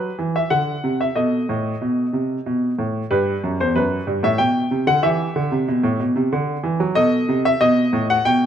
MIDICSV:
0, 0, Header, 1, 2, 480
1, 0, Start_track
1, 0, Key_signature, 1, "minor"
1, 0, Tempo, 645856
1, 864, Time_signature, 3, 2, 24, 8
1, 6288, End_track
2, 0, Start_track
2, 0, Title_t, "Grand piano"
2, 0, Program_c, 0, 0
2, 0, Note_on_c, 0, 67, 31
2, 0, Note_on_c, 0, 71, 61
2, 107, Note_off_c, 0, 71, 0
2, 138, Note_on_c, 0, 52, 49
2, 265, Note_on_c, 0, 76, 60
2, 312, Note_off_c, 0, 52, 0
2, 374, Note_on_c, 0, 78, 70
2, 376, Note_on_c, 0, 50, 49
2, 383, Note_off_c, 0, 76, 0
2, 551, Note_off_c, 0, 50, 0
2, 623, Note_on_c, 0, 48, 51
2, 739, Note_off_c, 0, 78, 0
2, 748, Note_on_c, 0, 76, 58
2, 797, Note_off_c, 0, 48, 0
2, 834, Note_off_c, 0, 67, 0
2, 859, Note_on_c, 0, 75, 58
2, 860, Note_on_c, 0, 69, 32
2, 862, Note_on_c, 0, 47, 52
2, 866, Note_off_c, 0, 76, 0
2, 1037, Note_off_c, 0, 47, 0
2, 1109, Note_on_c, 0, 45, 51
2, 1282, Note_off_c, 0, 45, 0
2, 1349, Note_on_c, 0, 47, 54
2, 1523, Note_off_c, 0, 47, 0
2, 1585, Note_on_c, 0, 48, 49
2, 1760, Note_off_c, 0, 48, 0
2, 1830, Note_on_c, 0, 47, 53
2, 2003, Note_off_c, 0, 47, 0
2, 2068, Note_off_c, 0, 75, 0
2, 2070, Note_on_c, 0, 45, 50
2, 2243, Note_off_c, 0, 45, 0
2, 2280, Note_off_c, 0, 69, 0
2, 2308, Note_on_c, 0, 71, 63
2, 2310, Note_on_c, 0, 43, 55
2, 2312, Note_on_c, 0, 67, 33
2, 2483, Note_off_c, 0, 43, 0
2, 2525, Note_off_c, 0, 71, 0
2, 2554, Note_on_c, 0, 42, 51
2, 2666, Note_off_c, 0, 42, 0
2, 2675, Note_on_c, 0, 40, 51
2, 2679, Note_on_c, 0, 72, 61
2, 2786, Note_off_c, 0, 40, 0
2, 2791, Note_on_c, 0, 71, 68
2, 2792, Note_on_c, 0, 42, 54
2, 2794, Note_off_c, 0, 72, 0
2, 2962, Note_off_c, 0, 42, 0
2, 3004, Note_off_c, 0, 71, 0
2, 3026, Note_on_c, 0, 43, 52
2, 3139, Note_off_c, 0, 43, 0
2, 3144, Note_on_c, 0, 45, 57
2, 3151, Note_on_c, 0, 76, 69
2, 3257, Note_on_c, 0, 79, 75
2, 3258, Note_off_c, 0, 45, 0
2, 3263, Note_on_c, 0, 47, 53
2, 3267, Note_off_c, 0, 76, 0
2, 3435, Note_off_c, 0, 47, 0
2, 3501, Note_on_c, 0, 48, 53
2, 3588, Note_off_c, 0, 79, 0
2, 3615, Note_off_c, 0, 48, 0
2, 3618, Note_on_c, 0, 50, 54
2, 3621, Note_on_c, 0, 78, 75
2, 3712, Note_off_c, 0, 67, 0
2, 3734, Note_off_c, 0, 50, 0
2, 3738, Note_on_c, 0, 76, 67
2, 3740, Note_on_c, 0, 52, 57
2, 3741, Note_off_c, 0, 78, 0
2, 3742, Note_on_c, 0, 67, 36
2, 3913, Note_off_c, 0, 52, 0
2, 3981, Note_on_c, 0, 50, 57
2, 4095, Note_off_c, 0, 50, 0
2, 4101, Note_on_c, 0, 48, 58
2, 4214, Note_off_c, 0, 48, 0
2, 4224, Note_on_c, 0, 47, 59
2, 4336, Note_off_c, 0, 47, 0
2, 4336, Note_on_c, 0, 45, 57
2, 4452, Note_off_c, 0, 45, 0
2, 4457, Note_off_c, 0, 76, 0
2, 4457, Note_on_c, 0, 47, 56
2, 4572, Note_off_c, 0, 47, 0
2, 4577, Note_on_c, 0, 48, 57
2, 4692, Note_off_c, 0, 48, 0
2, 4701, Note_on_c, 0, 50, 57
2, 4872, Note_off_c, 0, 50, 0
2, 4931, Note_on_c, 0, 52, 60
2, 5047, Note_off_c, 0, 52, 0
2, 5053, Note_on_c, 0, 54, 60
2, 5147, Note_off_c, 0, 67, 0
2, 5168, Note_off_c, 0, 54, 0
2, 5168, Note_on_c, 0, 75, 80
2, 5171, Note_on_c, 0, 69, 41
2, 5174, Note_on_c, 0, 47, 63
2, 5347, Note_off_c, 0, 47, 0
2, 5415, Note_on_c, 0, 48, 60
2, 5501, Note_off_c, 0, 75, 0
2, 5540, Note_on_c, 0, 76, 75
2, 5588, Note_off_c, 0, 48, 0
2, 5653, Note_on_c, 0, 75, 84
2, 5656, Note_on_c, 0, 47, 67
2, 5657, Note_off_c, 0, 76, 0
2, 5829, Note_off_c, 0, 47, 0
2, 5893, Note_on_c, 0, 45, 61
2, 5986, Note_off_c, 0, 75, 0
2, 6020, Note_on_c, 0, 78, 79
2, 6068, Note_off_c, 0, 45, 0
2, 6134, Note_on_c, 0, 79, 82
2, 6137, Note_on_c, 0, 47, 63
2, 6139, Note_off_c, 0, 78, 0
2, 6288, Note_off_c, 0, 47, 0
2, 6288, Note_off_c, 0, 69, 0
2, 6288, Note_off_c, 0, 79, 0
2, 6288, End_track
0, 0, End_of_file